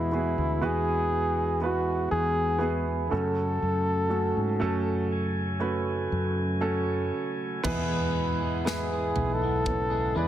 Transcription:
0.00 0.34 E2 medium
0.00 0.58 B2 soft
0.00 3.08 E3 medium
0.00 3.08 G#3 medium
0.00 0.12 B3 medium
0.00 3.07 B3 medium
0.00 0.12 E4 medium
0.00 0.65 E4 medium
0.00 0.13 F#4 medium
0.00 5.08 F#4 medium
0.00 0.14 G#4 medium
0.12 0.60 B3 medium
0.12 0.60 E4 soft
0.12 0.60 F#4 soft
0.12 0.61 G#4 medium
0.38 0.61 D2 medium
0.62 2.07 E2 medium
0.62 1.56 B3 medium
0.62 1.56 E4 medium
0.62 1.57 F#4 medium
0.62 1.62 G#4 medium
0.62 1.57 B4 medium
1.61 2.56 B3 medium
1.61 2.57 E4 soft
1.61 2.57 F#4 soft
1.61 2.09 F#4 medium
1.61 2.57 B4 medium
2.11 3.08 E2 medium
2.11 2.80 G#4 medium
2.59 3.10 B3 medium
2.59 3.10 E4 medium
2.59 3.10 F#4 medium
2.59 3.11 G#4 medium
3.10 3.59 F#2 medium
3.10 4.57 C#3 soft
3.10 7.62 C#3 soft
3.10 7.61 F#3 medium
3.10 4.06 A3 medium
3.10 7.62 A3 medium
3.10 4.06 C#4 medium
3.10 4.07 F#4 medium
3.10 5.07 A4 medium
3.10 4.07 A4 medium
3.62 4.33 F#2 medium
4.09 4.58 A3 soft
4.09 4.59 C#4 soft
4.09 4.59 F#4 medium
4.09 4.59 A4 medium
4.37 4.60 G#2 medium
4.60 6.09 F#2 medium
4.60 5.56 A3 medium
4.60 5.56 C#4 medium
4.60 5.57 F#4 medium
4.60 5.57 A4 medium
5.12 7.63 G#5 medium
5.60 6.57 A3 medium
5.60 6.57 C#4 medium
5.60 6.58 F#4 medium
5.60 6.58 B4 medium
6.12 7.10 F#2 medium
6.61 7.59 A3 medium
6.61 7.59 C#4 medium
6.61 7.59 F#4 medium
6.61 7.59 A4 medium
7.64 8.40 E2 medium
7.64 9.12 E2 medium
7.64 10.28 G#2 soft
7.64 9.11 B2 medium
7.64 8.41 B2 medium
7.64 10.28 E3 medium
7.64 8.41 E3 medium
7.64 8.41 G#3 medium
7.64 8.60 B3 loud
7.64 9.64 B3 medium
7.64 8.40 B3 medium
7.64 10.28 E4 medium
7.64 8.60 E4 medium
7.64 8.60 G#4 medium
7.64 8.39 G#4 medium
7.64 8.61 B4 loud
7.64 kick loud
7.64 floor tom medium
7.64 crash medium
8.40 8.65 E3 soft
8.40 8.65 G#3 soft
8.40 8.66 B3 soft
8.40 8.65 G#4 soft
8.65 8.91 E2 medium
8.65 8.91 B2 medium
8.65 8.91 E3 medium
8.65 8.91 G#3 medium
8.65 9.60 B3 medium
8.65 8.90 B3 medium
8.65 9.60 E4 medium
8.65 9.61 G#4 medium
8.65 9.35 G#4 medium
8.65 8.89 G#4 medium
8.65 9.61 B4 medium
8.65 snare medium
8.90 9.42 E3 soft
8.90 9.41 G#3 soft
8.90 9.41 B3 soft
8.90 9.40 G#4 soft
9.16 10.12 B1 medium
9.16 floor tom medium
9.34 10.19 A4 medium
9.42 9.92 E3 soft
9.42 9.90 B3 soft
9.65 10.28 C#3 medium
9.65 10.13 B3 soft
9.65 10.13 E4 soft
9.65 10.13 B4 soft
9.65 10.13 C#5 medium
9.65 kick medium
9.65 floor tom soft
9.90 10.14 E3 soft
9.90 10.14 G#3 soft
9.90 10.16 B3 soft
9.90 10.15 G#4 soft
10.15 10.28 E2 medium
10.15 10.28 E3 medium
10.15 10.28 G#3 medium
10.15 10.28 B3 soft
10.15 10.28 B3 medium
10.15 10.28 E4 soft
10.15 10.28 G#4 soft
10.15 10.28 G#4 medium
10.15 10.28 B4 medium
10.15 10.28 D5 medium

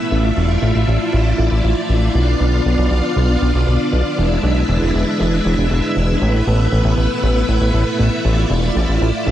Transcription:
0.00 2.11 A3 medium
0.00 2.11 E5 medium
0.11 0.31 A1 medium
0.11 2.13 E4 medium
0.11 2.13 F4 medium
0.11 4.14 D5 medium
0.37 0.57 E1 loud
0.62 0.72 A1 loud
0.75 0.85 A1 medium
0.88 0.98 A1 loud
1.13 1.33 A1 medium
1.38 1.48 A1 medium
1.51 1.61 A1 medium
1.64 1.74 A1 medium
1.89 2.09 A1 medium
2.14 2.35 B1 medium
2.14 4.16 B3 medium
2.14 6.18 D4 medium
2.14 4.16 F4 medium
2.14 4.16 F5 medium
2.40 2.60 B1 medium
2.66 2.76 B1 medium
2.78 2.88 B1 loud
2.91 3.01 B1 medium
3.16 3.36 B1 loud
3.42 3.52 B1 medium
3.54 3.65 B1 medium
3.67 3.77 B1 medium
3.93 4.03 B1 medium
4.18 4.38 E1 medium
4.18 6.20 G#3 medium
4.18 6.20 E4 medium
4.18 6.20 B4 medium
4.18 9.31 E5 medium
4.43 4.63 B1 loud
4.69 4.79 E1 loud
4.82 4.92 E1 medium
4.94 5.04 E1 medium
5.20 5.40 E1 medium
5.45 5.55 E1 loud
5.58 5.68 E1 medium
5.71 5.81 E1 medium
5.96 6.16 E1 medium
6.21 6.42 A1 medium
6.21 9.31 A3 medium
6.21 8.23 B3 medium
6.21 9.31 E4 medium
6.21 8.23 B4 medium
6.47 6.67 A1 medium
6.72 6.82 A1 medium
6.85 6.95 A1 loud
6.98 7.08 A1 medium
7.23 7.43 A1 loud
7.49 7.59 A1 medium
7.61 7.71 A1 medium
7.74 7.84 A1 medium
7.99 8.10 A1 medium
8.25 8.45 A1 medium
8.25 9.31 F4 medium
8.25 9.31 D5 medium
8.50 8.70 E1 loud
8.76 8.86 A1 loud
8.88 8.98 A1 medium
9.01 9.11 A1 medium
9.26 9.31 A1 medium

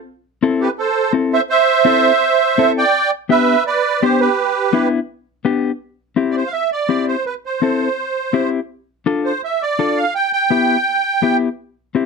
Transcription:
0.43 0.67 C4 loud
0.43 0.68 E4 medium
0.43 0.68 A4 loud
0.61 0.69 G4 medium
0.61 0.70 B4 medium
0.78 1.12 A4 medium
0.78 1.13 C5 medium
1.13 1.39 C4 medium
1.13 1.39 E4 medium
1.13 1.39 A4 medium
1.33 1.41 C5 medium
1.33 1.41 E5 medium
1.50 2.72 C5 medium
1.50 2.73 E5 loud
1.85 2.11 C4 medium
1.85 2.11 E4 medium
1.85 2.11 A4 medium
2.58 2.83 C4 medium
2.58 2.84 E4 medium
2.58 2.83 A4 loud
2.78 3.11 D5 medium
2.78 3.10 G5 loud
3.29 3.55 B3 medium
3.29 3.55 D4 medium
3.29 3.55 G4 medium
3.29 3.64 B4 medium
3.29 3.64 E5 loud
3.67 4.00 B4 medium
3.67 4.03 D5 medium
4.02 4.27 B3 medium
4.02 4.27 D4 medium
4.02 4.28 G4 medium
4.02 4.20 G4 medium
4.02 4.21 C5 medium
4.20 4.88 G4 medium
4.20 4.88 B4 medium
4.73 4.99 B3 loud
4.73 4.99 D4 medium
4.73 4.99 E4 loud
5.45 5.70 B3 medium
5.45 5.71 D4 medium
5.45 5.71 G4 medium
6.16 6.42 C4 medium
6.16 6.43 E4 medium
6.16 6.43 G4 medium
6.31 6.36 D5 medium
6.37 6.49 C5 medium
6.47 6.53 F5 medium
6.53 6.70 E5 medium
6.72 7.06 D5 medium
6.89 7.15 C4 medium
6.89 7.15 E4 medium
6.89 7.15 G4 medium
7.08 7.25 C5 medium
7.26 7.34 B4 medium
7.46 8.49 C5 medium
7.62 7.87 C4 medium
7.62 7.88 E4 medium
7.62 7.88 A4 medium
8.33 8.59 C4 medium
8.33 8.59 E4 medium
8.33 8.59 G4 medium
9.06 9.32 D4 medium
9.06 9.32 F4 medium
9.06 9.32 A4 loud
9.25 9.41 C5 medium
9.44 9.62 E5 medium
9.62 9.98 D5 medium
9.79 10.04 D4 medium
9.79 10.04 F4 medium
9.79 10.04 A4 medium
9.97 10.14 F5 medium
10.15 10.31 G5 medium
10.33 11.37 G5 medium
10.50 10.76 B3 medium
10.50 10.76 E4 medium
10.50 10.76 G4 medium
11.22 11.48 B3 medium
11.22 11.48 E4 medium
11.22 11.48 G4 medium
11.95 12.06 C4 medium
11.95 12.06 E4 medium
11.95 12.06 G4 medium

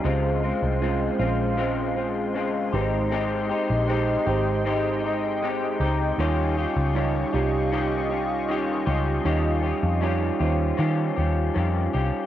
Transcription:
0.03 0.51 C#2 loud
0.03 0.43 C#3 medium
0.03 0.68 G#3 medium
0.03 6.15 G#3 medium
0.03 0.43 G#3 medium
0.03 0.43 C4 medium
0.03 0.69 C#4 medium
0.03 0.69 F4 medium
0.03 0.42 F4 loud
0.03 2.71 C5 medium
0.03 0.70 C5 medium
0.03 2.71 F5 medium
0.03 6.15 C6 medium
0.43 0.81 G#3 soft
0.43 0.82 C4 medium
0.43 0.81 F4 medium
0.62 1.08 C2 medium
0.81 1.13 G#3 medium
0.81 1.20 G#3 medium
0.81 1.20 C4 medium
0.81 1.14 C#4 medium
0.81 1.14 F4 medium
0.81 1.18 F4 medium
0.81 1.14 C5 medium
1.18 2.69 A#1 medium
1.18 2.48 G#3 medium
1.18 1.57 G#3 soft
1.18 1.57 C4 medium
1.18 2.48 C#4 medium
1.18 1.58 F4 medium
1.18 2.49 F4 medium
1.18 2.49 C5 medium
1.57 1.96 C#3 medium
1.57 1.97 G#3 medium
1.57 1.96 C4 medium
1.57 1.95 F4 medium
1.96 2.34 G#3 soft
1.96 2.35 C4 soft
1.96 2.35 F4 medium
2.34 2.73 C#3 medium
2.34 2.74 G#3 medium
2.34 2.74 C4 medium
2.34 2.74 F4 medium
2.72 3.50 G#1 medium
2.72 3.69 G#3 medium
2.72 3.11 C4 soft
2.72 3.70 D#4 medium
2.72 3.12 D#4 medium
2.72 3.11 G4 medium
2.72 3.70 G4 medium
2.72 2.81 B4 medium
2.72 6.16 D#5 medium
2.72 12.26 G5 medium
2.81 3.74 C5 loud
3.11 3.50 G#3 medium
3.11 3.50 C4 medium
3.11 3.50 D#4 medium
3.11 3.48 G4 medium
3.49 3.88 C4 soft
3.49 3.89 D#4 medium
3.49 3.88 G4 medium
3.70 4.16 A#1 medium
3.88 4.20 G#3 medium
3.88 4.27 G#3 medium
3.88 4.27 C4 medium
3.88 4.21 D#4 medium
3.88 4.27 D#4 medium
3.88 4.21 G4 medium
3.88 4.25 G4 medium
3.88 4.22 C5 medium
4.26 5.76 G#1 medium
4.26 5.55 G#3 medium
4.26 4.65 C4 soft
4.26 5.56 D#4 medium
4.26 4.65 D#4 soft
4.26 4.65 G4 medium
4.26 5.56 G4 medium
4.26 5.56 C5 medium
4.65 5.04 G#3 medium
4.65 5.04 C4 medium
4.65 5.04 D#4 medium
4.65 5.03 G4 medium
5.04 5.43 C4 soft
5.04 5.43 D#4 soft
5.04 5.42 G4 soft
5.04 5.39 D#5 medium
5.42 5.81 G#3 medium
5.42 5.81 C4 medium
5.42 5.81 D#4 medium
5.42 5.79 G4 medium
5.42 5.78 G5 medium
5.80 6.11 C#2 medium
5.80 6.19 C4 soft
5.80 6.20 D#4 medium
5.80 6.19 G4 medium
5.80 6.16 A#5 medium
6.18 6.65 D#2 medium
6.18 6.57 D#3 medium
6.18 6.83 G3 medium
6.18 6.58 C#4 medium
6.18 6.83 D#4 medium
6.18 6.83 F4 medium
6.18 12.26 F4 medium
6.18 6.57 F4 loud
6.18 6.56 G4 loud
6.18 6.84 C#5 medium
6.18 12.26 D#5 medium
6.18 12.26 C#6 medium
6.57 6.95 C#4 soft
6.57 6.96 F4 medium
6.57 6.96 G4 medium
6.76 7.22 C#2 medium
6.94 7.34 D#3 medium
6.94 7.27 G3 medium
6.94 7.34 C#4 medium
6.94 7.28 D#4 medium
6.94 7.28 F4 medium
6.94 7.33 F4 medium
6.94 7.31 G4 medium
6.94 7.28 C#5 loud
7.33 8.84 C2 medium
7.33 8.62 G3 medium
7.33 7.71 C#4 medium
7.33 8.62 D#4 medium
7.33 8.63 F4 medium
7.33 7.72 F4 medium
7.33 7.72 G4 medium
7.33 8.63 G4 medium
7.72 8.11 D#3 medium
7.72 8.11 C#4 medium
7.72 8.10 F4 medium
7.72 8.08 G4 medium
8.09 8.48 C#4 soft
8.09 8.49 F4 soft
8.09 8.48 G4 medium
8.49 8.87 D#3 medium
8.49 8.88 C#4 medium
8.49 8.87 F4 medium
8.49 8.85 G4 medium
8.86 9.18 C#2 medium
8.86 9.24 C#4 soft
8.86 9.25 F4 medium
8.86 9.25 G4 medium
9.24 9.71 D#2 loud
9.24 9.64 D#3 medium
9.24 9.89 G3 medium
9.24 9.64 C#4 medium
9.24 9.90 D#4 medium
9.24 9.90 F4 medium
9.24 9.63 F4 loud
9.24 9.62 G4 loud
9.24 9.91 C#5 medium
9.63 10.01 C#4 soft
9.63 10.02 F4 medium
9.63 10.02 G4 medium
9.83 10.29 F2 medium
10.01 10.40 D#3 medium
10.01 10.34 G3 medium
10.01 10.40 C#4 medium
10.01 10.34 D#4 medium
10.01 10.35 F4 medium
10.01 10.39 F4 medium
10.01 10.38 G4 medium
10.01 10.35 C#5 medium
10.39 10.71 D#2 medium
10.39 11.69 G3 medium
10.39 10.77 C#4 soft
10.39 11.70 D#4 medium
10.39 10.78 F4 medium
10.39 11.70 F4 medium
10.39 10.78 G4 medium
10.39 10.48 C5 medium
10.49 11.74 C#5 medium
10.77 11.17 D#3 medium
10.77 11.10 D#3 medium
10.77 11.17 C#4 medium
10.77 11.17 F4 medium
10.77 11.15 G4 medium
11.16 11.48 D#2 medium
11.16 11.54 C#4 soft
11.16 11.55 F4 soft
11.16 11.55 G4 medium
11.54 11.87 F2 medium
11.54 11.94 D#3 medium
11.54 11.94 C#4 medium
11.54 11.93 F4 medium
11.54 11.92 G4 medium
11.93 12.10 C2 medium
11.93 12.26 C#4 soft
11.93 12.26 F4 soft
11.93 12.26 G4 medium

